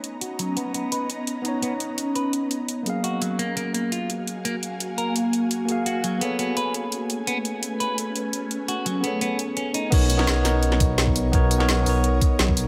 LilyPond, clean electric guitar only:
\new Staff \with { instrumentName = "Clean electric guitar" } { \time 4/4 \key b \lydian \tempo 4 = 170 r8 fis'8 fis8 b8 b8 b'8 r4 | r8 b8 r4 b'8 r4. | r8 fis'8 fis8 ais8 ais8 ais8 eis'8 r8 | r8 ais8 r4 ais'8 r4. |
r8 fis'8 fis8 b8 b8 b'8 r4 | r8 b8 r4 b'8 r4. | r8 fis'8 fis8 b8 b8 r8 cis'8 dis'8 | r1 |
r1 | }